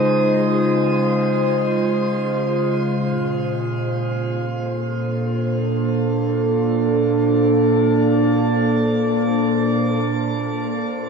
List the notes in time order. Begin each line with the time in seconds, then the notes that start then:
Already playing: C#3 G#3 D#4 F4 C5
2.98 A#2
3.55 A#3
4.22 A4
4.83 D4